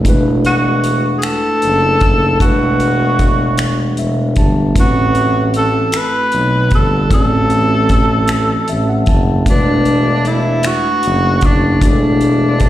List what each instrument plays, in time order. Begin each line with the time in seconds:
0.03 tuba E1, tine electric piano A3 D4 E4, kick, closed hi-hat
0.08 tine electric piano F#4 B4
0.45 tenor saxophone F#4, closed hi-hat
0.84 closed hi-hat
1.18 tenor saxophone G#4, closed hi-hat
1.23 tenor saxophone A4, finger snap
1.62 tuba F#1, closed hi-hat
2.00 tuba F#1, kick, closed hi-hat
2.38 tuba E1, tine electric piano A3 D4 E4, tenor saxophone F#4, kick, closed hi-hat
2.43 tine electric piano F#4 B4
2.80 closed hi-hat
3.19 kick, closed hi-hat
3.58 finger snap, closed hi-hat
3.97 tuba E1, tine electric piano E5, closed hi-hat
4.36 tuba G1, tine electric piano A5, kick, closed hi-hat
4.74 tuba A1, tine electric piano A3 C4 E4, kick, closed hi-hat
4.79 tine electric piano F#4 B4, tenor saxophone F#4
5.15 closed hi-hat
5.54 tenor saxophone A4, closed hi-hat
5.92 finger snap, closed hi-hat
5.97 tenor saxophone B4
6.32 tuba B1, closed hi-hat
6.71 tuba G1, kick, closed hi-hat
6.75 tenor saxophone A4
7.09 tuba A1, tine electric piano A3 C4 E4, kick, closed hi-hat
7.14 tine electric piano F#4 D5, tenor saxophone A4
7.50 closed hi-hat
7.89 kick, closed hi-hat
8.28 finger snap, closed hi-hat
8.68 tuba A1, tine electric piano E5, closed hi-hat
8.89 tine electric piano F#5
9.06 tuba F#1, tine electric piano A5, kick, closed hi-hat
9.45 tuba E1, tine electric piano A3 D4 E4, kick, closed hi-hat
9.50 tenor saxophone D4, tine electric piano F#4 B4
9.85 closed hi-hat
10.25 tenor saxophone E4, closed hi-hat
10.63 tenor saxophone F#4, finger snap, closed hi-hat
11.03 tuba F#1, closed hi-hat
11.41 tuba F#1, kick, closed hi-hat
11.45 tenor saxophone D4
11.80 tuba E1, tine electric piano A3 D4 E4, kick, closed hi-hat
11.84 tenor saxophone D4, tine electric piano F#4 G#4
11.93 tine electric piano A4
12.21 closed hi-hat
12.60 kick, closed hi-hat